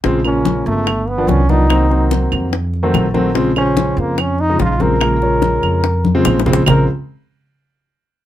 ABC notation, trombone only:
X:1
M:4/4
L:1/8
Q:1/4=145
K:Bbm
V:1 name="Trombone"
z D2 =A,2 =B, D E- | E2 z6 | z D2 B, D E F B- | B6 z2 |
B z6 z |]